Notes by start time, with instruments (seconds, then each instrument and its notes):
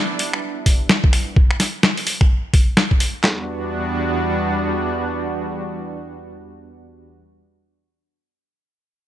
Already playing: analog synth pad G3 B3 D4 E4
0.19 open hi-hat
0.33 finger snap
0.66 kick, open hi-hat
0.89 snare
1.04 kick
1.13 finger snap, open hi-hat
1.36 kick
1.51 finger snap
1.60 snare, open hi-hat
1.83 snare
1.97 open hi-hat
2.07 open hi-hat
2.21 finger snap, kick
2.54 kick, open hi-hat
2.77 snare
2.91 kick
3.00 open hi-hat
3.24 analog synth pad E2 G3 B3 D4 F#4, snare, clap